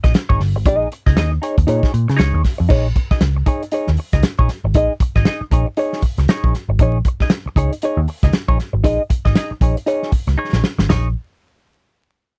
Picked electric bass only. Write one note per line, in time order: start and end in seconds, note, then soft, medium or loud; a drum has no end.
0.04 0.12 A#1 loud
0.30 0.38 G#1 medium
0.40 0.55 G1 medium
0.55 0.65 G#1 loud
0.65 0.86 A#1 loud
1.07 1.17 C#2 medium
1.17 1.37 D#2 loud
1.58 1.66 D#2 medium
1.68 1.80 A#2 loud
1.94 2.06 A#2 medium
2.09 2.17 C#3 loud
2.19 2.31 C#2 loud
2.34 2.42 D#2 loud
2.60 2.68 F2 medium
2.70 2.90 A#1 loud
3.11 muted picked electric bass stroke soft
3.21 3.41 C#2 loud
3.88 3.96 D#2 medium
4.13 4.21 C#2 loud
4.23 muted picked electric bass stroke soft
4.39 4.47 A#1 medium
4.64 4.75 G#1 loud
4.75 4.87 A#1 loud
5.16 5.24 G#1 medium
5.41 muted picked electric bass stroke soft
5.51 5.63 A#1 medium
6.02 muted picked electric bass stroke soft
6.18 6.26 C#2 loud
6.44 6.52 A#1 loud
6.69 6.77 G#1 loud
6.79 7.00 A#1 loud
7.20 muted picked electric bass stroke medium
7.46 muted picked electric bass stroke soft
7.56 7.68 C#2 medium
7.97 8.05 D#2 loud
8.23 8.31 C#2 medium
8.33 muted picked electric bass stroke soft
8.48 8.57 A#1 medium
8.74 8.84 G#1 medium
8.84 8.97 A#1 loud
9.25 9.33 G#1 medium
9.51 muted picked electric bass stroke soft
9.61 9.73 A#1 medium
10.12 muted picked electric bass stroke soft
10.27 10.36 C#2 medium
10.38 muted picked electric bass stroke medium
10.53 10.61 A#1 medium
10.79 10.87 G#1 loud
10.89 11.13 A#1 loud